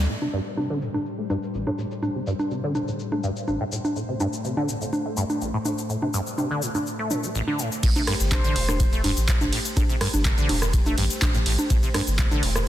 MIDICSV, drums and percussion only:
0, 0, Header, 1, 2, 480
1, 0, Start_track
1, 0, Key_signature, 0, "minor"
1, 0, Tempo, 483871
1, 89, Time_signature, 4, 2, 24, 8
1, 12579, End_track
2, 0, Start_track
2, 0, Title_t, "Drums"
2, 90, Note_on_c, 9, 82, 31
2, 189, Note_off_c, 9, 82, 0
2, 215, Note_on_c, 9, 63, 53
2, 314, Note_off_c, 9, 63, 0
2, 330, Note_on_c, 9, 82, 72
2, 430, Note_off_c, 9, 82, 0
2, 457, Note_on_c, 9, 82, 41
2, 556, Note_off_c, 9, 82, 0
2, 569, Note_on_c, 9, 63, 52
2, 570, Note_on_c, 9, 82, 30
2, 668, Note_off_c, 9, 63, 0
2, 670, Note_off_c, 9, 82, 0
2, 811, Note_on_c, 9, 82, 74
2, 910, Note_off_c, 9, 82, 0
2, 935, Note_on_c, 9, 63, 53
2, 937, Note_on_c, 9, 82, 39
2, 1034, Note_off_c, 9, 63, 0
2, 1036, Note_off_c, 9, 82, 0
2, 1051, Note_on_c, 9, 82, 33
2, 1150, Note_off_c, 9, 82, 0
2, 1289, Note_on_c, 9, 63, 51
2, 1290, Note_on_c, 9, 82, 69
2, 1388, Note_off_c, 9, 63, 0
2, 1389, Note_off_c, 9, 82, 0
2, 1417, Note_on_c, 9, 82, 41
2, 1516, Note_off_c, 9, 82, 0
2, 1531, Note_on_c, 9, 82, 33
2, 1630, Note_off_c, 9, 82, 0
2, 1656, Note_on_c, 9, 63, 54
2, 1755, Note_off_c, 9, 63, 0
2, 1771, Note_on_c, 9, 82, 71
2, 1870, Note_off_c, 9, 82, 0
2, 1897, Note_on_c, 9, 82, 43
2, 1996, Note_off_c, 9, 82, 0
2, 2009, Note_on_c, 9, 63, 60
2, 2011, Note_on_c, 9, 82, 31
2, 2108, Note_off_c, 9, 63, 0
2, 2110, Note_off_c, 9, 82, 0
2, 2250, Note_on_c, 9, 82, 69
2, 2349, Note_off_c, 9, 82, 0
2, 2375, Note_on_c, 9, 63, 58
2, 2377, Note_on_c, 9, 82, 38
2, 2474, Note_off_c, 9, 63, 0
2, 2476, Note_off_c, 9, 82, 0
2, 2490, Note_on_c, 9, 82, 30
2, 2589, Note_off_c, 9, 82, 0
2, 2729, Note_on_c, 9, 63, 59
2, 2730, Note_on_c, 9, 82, 72
2, 2828, Note_off_c, 9, 63, 0
2, 2829, Note_off_c, 9, 82, 0
2, 2857, Note_on_c, 9, 82, 40
2, 2956, Note_off_c, 9, 82, 0
2, 2971, Note_on_c, 9, 82, 33
2, 3070, Note_off_c, 9, 82, 0
2, 3095, Note_on_c, 9, 63, 57
2, 3195, Note_off_c, 9, 63, 0
2, 3210, Note_on_c, 9, 82, 67
2, 3310, Note_off_c, 9, 82, 0
2, 3337, Note_on_c, 9, 82, 40
2, 3436, Note_off_c, 9, 82, 0
2, 3449, Note_on_c, 9, 63, 57
2, 3450, Note_on_c, 9, 82, 30
2, 3548, Note_off_c, 9, 63, 0
2, 3550, Note_off_c, 9, 82, 0
2, 3691, Note_on_c, 9, 82, 72
2, 3790, Note_off_c, 9, 82, 0
2, 3815, Note_on_c, 9, 63, 59
2, 3817, Note_on_c, 9, 82, 40
2, 3915, Note_off_c, 9, 63, 0
2, 3916, Note_off_c, 9, 82, 0
2, 3930, Note_on_c, 9, 82, 31
2, 4029, Note_off_c, 9, 82, 0
2, 4169, Note_on_c, 9, 63, 58
2, 4170, Note_on_c, 9, 82, 68
2, 4268, Note_off_c, 9, 63, 0
2, 4269, Note_off_c, 9, 82, 0
2, 4296, Note_on_c, 9, 82, 40
2, 4396, Note_off_c, 9, 82, 0
2, 4410, Note_on_c, 9, 82, 29
2, 4509, Note_off_c, 9, 82, 0
2, 4535, Note_on_c, 9, 63, 58
2, 4634, Note_off_c, 9, 63, 0
2, 4650, Note_on_c, 9, 82, 73
2, 4749, Note_off_c, 9, 82, 0
2, 4776, Note_on_c, 9, 82, 36
2, 4875, Note_off_c, 9, 82, 0
2, 4888, Note_on_c, 9, 63, 63
2, 4890, Note_on_c, 9, 82, 32
2, 4988, Note_off_c, 9, 63, 0
2, 4989, Note_off_c, 9, 82, 0
2, 5129, Note_on_c, 9, 82, 66
2, 5229, Note_off_c, 9, 82, 0
2, 5255, Note_on_c, 9, 63, 59
2, 5256, Note_on_c, 9, 82, 38
2, 5354, Note_off_c, 9, 63, 0
2, 5355, Note_off_c, 9, 82, 0
2, 5370, Note_on_c, 9, 82, 31
2, 5469, Note_off_c, 9, 82, 0
2, 5608, Note_on_c, 9, 63, 59
2, 5609, Note_on_c, 9, 82, 71
2, 5707, Note_off_c, 9, 63, 0
2, 5709, Note_off_c, 9, 82, 0
2, 5736, Note_on_c, 9, 82, 41
2, 5835, Note_off_c, 9, 82, 0
2, 5849, Note_on_c, 9, 82, 29
2, 5949, Note_off_c, 9, 82, 0
2, 5975, Note_on_c, 9, 63, 56
2, 6074, Note_off_c, 9, 63, 0
2, 6089, Note_on_c, 9, 82, 69
2, 6188, Note_off_c, 9, 82, 0
2, 6216, Note_on_c, 9, 82, 40
2, 6315, Note_off_c, 9, 82, 0
2, 6328, Note_on_c, 9, 63, 57
2, 6330, Note_on_c, 9, 82, 30
2, 6427, Note_off_c, 9, 63, 0
2, 6429, Note_off_c, 9, 82, 0
2, 6569, Note_on_c, 9, 82, 70
2, 6668, Note_off_c, 9, 82, 0
2, 6694, Note_on_c, 9, 63, 57
2, 6696, Note_on_c, 9, 82, 39
2, 6794, Note_off_c, 9, 63, 0
2, 6795, Note_off_c, 9, 82, 0
2, 6810, Note_on_c, 9, 82, 33
2, 6909, Note_off_c, 9, 82, 0
2, 7049, Note_on_c, 9, 63, 56
2, 7050, Note_on_c, 9, 82, 73
2, 7148, Note_off_c, 9, 63, 0
2, 7149, Note_off_c, 9, 82, 0
2, 7177, Note_on_c, 9, 82, 39
2, 7276, Note_off_c, 9, 82, 0
2, 7290, Note_on_c, 9, 82, 31
2, 7390, Note_off_c, 9, 82, 0
2, 7415, Note_on_c, 9, 63, 59
2, 7515, Note_off_c, 9, 63, 0
2, 7531, Note_on_c, 9, 82, 74
2, 7630, Note_off_c, 9, 82, 0
2, 7657, Note_on_c, 9, 82, 41
2, 7756, Note_off_c, 9, 82, 0
2, 7768, Note_on_c, 9, 36, 123
2, 7769, Note_on_c, 9, 42, 99
2, 7769, Note_on_c, 9, 49, 109
2, 7769, Note_on_c, 9, 51, 55
2, 7770, Note_on_c, 9, 82, 56
2, 7867, Note_off_c, 9, 36, 0
2, 7868, Note_off_c, 9, 42, 0
2, 7868, Note_off_c, 9, 49, 0
2, 7868, Note_off_c, 9, 51, 0
2, 7870, Note_off_c, 9, 82, 0
2, 7896, Note_on_c, 9, 42, 42
2, 7896, Note_on_c, 9, 63, 61
2, 7897, Note_on_c, 9, 82, 35
2, 7995, Note_off_c, 9, 42, 0
2, 7995, Note_off_c, 9, 63, 0
2, 7996, Note_off_c, 9, 82, 0
2, 8009, Note_on_c, 9, 37, 76
2, 8009, Note_on_c, 9, 46, 107
2, 8009, Note_on_c, 9, 51, 79
2, 8109, Note_off_c, 9, 37, 0
2, 8109, Note_off_c, 9, 46, 0
2, 8109, Note_off_c, 9, 51, 0
2, 8136, Note_on_c, 9, 42, 42
2, 8138, Note_on_c, 9, 82, 71
2, 8235, Note_off_c, 9, 42, 0
2, 8237, Note_off_c, 9, 82, 0
2, 8248, Note_on_c, 9, 36, 115
2, 8250, Note_on_c, 9, 42, 99
2, 8250, Note_on_c, 9, 51, 55
2, 8250, Note_on_c, 9, 63, 63
2, 8251, Note_on_c, 9, 82, 55
2, 8253, Note_on_c, 9, 39, 125
2, 8348, Note_off_c, 9, 36, 0
2, 8349, Note_off_c, 9, 42, 0
2, 8349, Note_off_c, 9, 51, 0
2, 8349, Note_off_c, 9, 63, 0
2, 8350, Note_off_c, 9, 82, 0
2, 8352, Note_off_c, 9, 39, 0
2, 8376, Note_on_c, 9, 42, 42
2, 8377, Note_on_c, 9, 82, 33
2, 8475, Note_off_c, 9, 42, 0
2, 8477, Note_off_c, 9, 82, 0
2, 8489, Note_on_c, 9, 46, 104
2, 8489, Note_on_c, 9, 51, 77
2, 8589, Note_off_c, 9, 46, 0
2, 8589, Note_off_c, 9, 51, 0
2, 8616, Note_on_c, 9, 37, 78
2, 8616, Note_on_c, 9, 63, 59
2, 8617, Note_on_c, 9, 82, 62
2, 8715, Note_off_c, 9, 37, 0
2, 8715, Note_off_c, 9, 63, 0
2, 8717, Note_off_c, 9, 82, 0
2, 8729, Note_on_c, 9, 36, 123
2, 8729, Note_on_c, 9, 42, 102
2, 8729, Note_on_c, 9, 51, 57
2, 8731, Note_on_c, 9, 82, 59
2, 8828, Note_off_c, 9, 36, 0
2, 8829, Note_off_c, 9, 42, 0
2, 8829, Note_off_c, 9, 51, 0
2, 8830, Note_off_c, 9, 82, 0
2, 8856, Note_on_c, 9, 42, 42
2, 8857, Note_on_c, 9, 82, 34
2, 8955, Note_off_c, 9, 42, 0
2, 8956, Note_off_c, 9, 82, 0
2, 8969, Note_on_c, 9, 46, 109
2, 8969, Note_on_c, 9, 51, 75
2, 8969, Note_on_c, 9, 63, 57
2, 9068, Note_off_c, 9, 46, 0
2, 9068, Note_off_c, 9, 51, 0
2, 9068, Note_off_c, 9, 63, 0
2, 9096, Note_on_c, 9, 42, 42
2, 9097, Note_on_c, 9, 82, 67
2, 9195, Note_off_c, 9, 42, 0
2, 9196, Note_off_c, 9, 82, 0
2, 9208, Note_on_c, 9, 36, 107
2, 9209, Note_on_c, 9, 42, 100
2, 9209, Note_on_c, 9, 51, 53
2, 9211, Note_on_c, 9, 82, 58
2, 9212, Note_on_c, 9, 39, 127
2, 9308, Note_off_c, 9, 36, 0
2, 9308, Note_off_c, 9, 42, 0
2, 9308, Note_off_c, 9, 51, 0
2, 9310, Note_off_c, 9, 82, 0
2, 9312, Note_off_c, 9, 39, 0
2, 9336, Note_on_c, 9, 42, 41
2, 9336, Note_on_c, 9, 63, 57
2, 9337, Note_on_c, 9, 82, 33
2, 9435, Note_off_c, 9, 42, 0
2, 9435, Note_off_c, 9, 63, 0
2, 9436, Note_off_c, 9, 82, 0
2, 9449, Note_on_c, 9, 46, 108
2, 9449, Note_on_c, 9, 51, 79
2, 9548, Note_off_c, 9, 46, 0
2, 9548, Note_off_c, 9, 51, 0
2, 9575, Note_on_c, 9, 42, 45
2, 9577, Note_on_c, 9, 82, 67
2, 9675, Note_off_c, 9, 42, 0
2, 9676, Note_off_c, 9, 82, 0
2, 9688, Note_on_c, 9, 36, 123
2, 9689, Note_on_c, 9, 42, 98
2, 9689, Note_on_c, 9, 51, 55
2, 9689, Note_on_c, 9, 63, 65
2, 9691, Note_on_c, 9, 82, 56
2, 9787, Note_off_c, 9, 36, 0
2, 9788, Note_off_c, 9, 42, 0
2, 9788, Note_off_c, 9, 51, 0
2, 9788, Note_off_c, 9, 63, 0
2, 9790, Note_off_c, 9, 82, 0
2, 9816, Note_on_c, 9, 42, 40
2, 9817, Note_on_c, 9, 82, 32
2, 9915, Note_off_c, 9, 42, 0
2, 9916, Note_off_c, 9, 82, 0
2, 9929, Note_on_c, 9, 37, 83
2, 9929, Note_on_c, 9, 46, 111
2, 9929, Note_on_c, 9, 51, 74
2, 10029, Note_off_c, 9, 37, 0
2, 10029, Note_off_c, 9, 46, 0
2, 10029, Note_off_c, 9, 51, 0
2, 10056, Note_on_c, 9, 42, 40
2, 10056, Note_on_c, 9, 63, 61
2, 10057, Note_on_c, 9, 82, 67
2, 10155, Note_off_c, 9, 42, 0
2, 10155, Note_off_c, 9, 63, 0
2, 10156, Note_off_c, 9, 82, 0
2, 10168, Note_on_c, 9, 36, 112
2, 10169, Note_on_c, 9, 42, 95
2, 10169, Note_on_c, 9, 51, 50
2, 10170, Note_on_c, 9, 82, 54
2, 10172, Note_on_c, 9, 39, 123
2, 10267, Note_off_c, 9, 36, 0
2, 10268, Note_off_c, 9, 42, 0
2, 10268, Note_off_c, 9, 51, 0
2, 10269, Note_off_c, 9, 82, 0
2, 10271, Note_off_c, 9, 39, 0
2, 10295, Note_on_c, 9, 42, 41
2, 10297, Note_on_c, 9, 82, 31
2, 10395, Note_off_c, 9, 42, 0
2, 10396, Note_off_c, 9, 82, 0
2, 10409, Note_on_c, 9, 46, 110
2, 10409, Note_on_c, 9, 51, 74
2, 10409, Note_on_c, 9, 63, 68
2, 10508, Note_off_c, 9, 46, 0
2, 10508, Note_off_c, 9, 51, 0
2, 10508, Note_off_c, 9, 63, 0
2, 10535, Note_on_c, 9, 37, 80
2, 10535, Note_on_c, 9, 42, 41
2, 10536, Note_on_c, 9, 82, 61
2, 10634, Note_off_c, 9, 37, 0
2, 10634, Note_off_c, 9, 42, 0
2, 10636, Note_off_c, 9, 82, 0
2, 10648, Note_on_c, 9, 36, 127
2, 10649, Note_on_c, 9, 42, 101
2, 10649, Note_on_c, 9, 51, 60
2, 10650, Note_on_c, 9, 82, 61
2, 10747, Note_off_c, 9, 36, 0
2, 10748, Note_off_c, 9, 42, 0
2, 10748, Note_off_c, 9, 51, 0
2, 10749, Note_off_c, 9, 82, 0
2, 10775, Note_on_c, 9, 42, 41
2, 10775, Note_on_c, 9, 63, 61
2, 10776, Note_on_c, 9, 82, 34
2, 10874, Note_off_c, 9, 42, 0
2, 10874, Note_off_c, 9, 63, 0
2, 10875, Note_off_c, 9, 82, 0
2, 10888, Note_on_c, 9, 46, 109
2, 10888, Note_on_c, 9, 51, 70
2, 10987, Note_off_c, 9, 46, 0
2, 10987, Note_off_c, 9, 51, 0
2, 11015, Note_on_c, 9, 42, 41
2, 11016, Note_on_c, 9, 82, 65
2, 11114, Note_off_c, 9, 42, 0
2, 11115, Note_off_c, 9, 82, 0
2, 11128, Note_on_c, 9, 36, 111
2, 11128, Note_on_c, 9, 42, 95
2, 11128, Note_on_c, 9, 51, 57
2, 11128, Note_on_c, 9, 63, 66
2, 11129, Note_on_c, 9, 82, 55
2, 11131, Note_on_c, 9, 39, 127
2, 11227, Note_off_c, 9, 36, 0
2, 11227, Note_off_c, 9, 42, 0
2, 11227, Note_off_c, 9, 51, 0
2, 11227, Note_off_c, 9, 63, 0
2, 11229, Note_off_c, 9, 82, 0
2, 11230, Note_off_c, 9, 39, 0
2, 11255, Note_on_c, 9, 42, 38
2, 11256, Note_on_c, 9, 82, 31
2, 11354, Note_off_c, 9, 42, 0
2, 11355, Note_off_c, 9, 82, 0
2, 11368, Note_on_c, 9, 46, 113
2, 11368, Note_on_c, 9, 51, 76
2, 11467, Note_off_c, 9, 46, 0
2, 11467, Note_off_c, 9, 51, 0
2, 11495, Note_on_c, 9, 42, 41
2, 11495, Note_on_c, 9, 63, 67
2, 11496, Note_on_c, 9, 82, 66
2, 11594, Note_off_c, 9, 42, 0
2, 11594, Note_off_c, 9, 63, 0
2, 11595, Note_off_c, 9, 82, 0
2, 11608, Note_on_c, 9, 36, 127
2, 11608, Note_on_c, 9, 42, 96
2, 11608, Note_on_c, 9, 51, 56
2, 11610, Note_on_c, 9, 82, 57
2, 11708, Note_off_c, 9, 36, 0
2, 11708, Note_off_c, 9, 42, 0
2, 11708, Note_off_c, 9, 51, 0
2, 11709, Note_off_c, 9, 82, 0
2, 11735, Note_on_c, 9, 42, 38
2, 11737, Note_on_c, 9, 82, 33
2, 11834, Note_off_c, 9, 42, 0
2, 11836, Note_off_c, 9, 82, 0
2, 11848, Note_on_c, 9, 37, 86
2, 11848, Note_on_c, 9, 46, 116
2, 11848, Note_on_c, 9, 51, 80
2, 11848, Note_on_c, 9, 63, 61
2, 11948, Note_off_c, 9, 37, 0
2, 11948, Note_off_c, 9, 46, 0
2, 11948, Note_off_c, 9, 51, 0
2, 11948, Note_off_c, 9, 63, 0
2, 11975, Note_on_c, 9, 42, 39
2, 11977, Note_on_c, 9, 82, 66
2, 12074, Note_off_c, 9, 42, 0
2, 12076, Note_off_c, 9, 82, 0
2, 12088, Note_on_c, 9, 36, 122
2, 12089, Note_on_c, 9, 42, 90
2, 12089, Note_on_c, 9, 51, 52
2, 12090, Note_on_c, 9, 82, 53
2, 12092, Note_on_c, 9, 39, 123
2, 12188, Note_off_c, 9, 36, 0
2, 12188, Note_off_c, 9, 42, 0
2, 12188, Note_off_c, 9, 51, 0
2, 12189, Note_off_c, 9, 82, 0
2, 12191, Note_off_c, 9, 39, 0
2, 12215, Note_on_c, 9, 42, 38
2, 12215, Note_on_c, 9, 63, 63
2, 12216, Note_on_c, 9, 82, 32
2, 12314, Note_off_c, 9, 42, 0
2, 12314, Note_off_c, 9, 63, 0
2, 12316, Note_off_c, 9, 82, 0
2, 12329, Note_on_c, 9, 46, 114
2, 12329, Note_on_c, 9, 51, 78
2, 12428, Note_off_c, 9, 46, 0
2, 12428, Note_off_c, 9, 51, 0
2, 12455, Note_on_c, 9, 37, 85
2, 12455, Note_on_c, 9, 42, 37
2, 12456, Note_on_c, 9, 82, 66
2, 12554, Note_off_c, 9, 37, 0
2, 12554, Note_off_c, 9, 42, 0
2, 12556, Note_off_c, 9, 82, 0
2, 12579, End_track
0, 0, End_of_file